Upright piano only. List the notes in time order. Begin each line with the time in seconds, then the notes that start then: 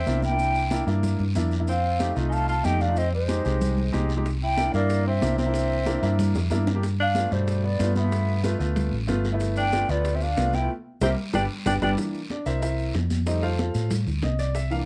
0.06 A#3 D4 E4
0.31 A#3 D4 E4
0.71 A#3 D4 E4
0.86 A#3 D4 E4
1.35 A#3 D4 E4
1.59 A#3 D4 E4
1.99 A3 D#4 G4
2.15 A3 D#4 F4
2.63 A3 D#4 G4
2.88 A3 D#4 F4
3.28 G#3 D#4 G4
3.44 G#3 D#4 G4
3.93 G#3 D#4 G4
4.17 G#3 D#4 G4
4.57 A#3 D4 E4
4.73 A#3 D4 E4
5.22 A#3 D4 E4
5.46 A#3 D4 E4
5.86 A#3 D4 E4
6.02 A#3 D4 E4
6.50 A#3 D4 E4
6.75 A#3 D4 G4
7.15 A3 B3 F4
7.31 B2 A3 D4
7.79 A3 B3 F4
8.03 A3 B3 F4
8.44 A3 B3 F4
8.59 A3 B3 F4
9.08 A3 B3 F4
9.33 A3 B3 E4
9.72 A3 B3 F4
9.88 A3 B3 F4
10.37 A3 B3 F4
10.61 A3 B3 F4
11.02 G3 A#3 C4
11.33 G3 B3 D4
11.66 G3 B3 D4
11.82 G3 B3 D4
11.97 E3 A#3 D4
12.31 D4 D5
12.46 E4 A#4 C5 E5
12.58 D#5
12.62 E4 A#4 C5 E5
13.26 G3 A3 D#4 A4 C5 D#5
13.43 F4 A4 C5 F5
13.59 F4 A4 C5 F5
14.24 D#5
14.39 D5
14.55 E5
14.71 E3 A#3 D4 F5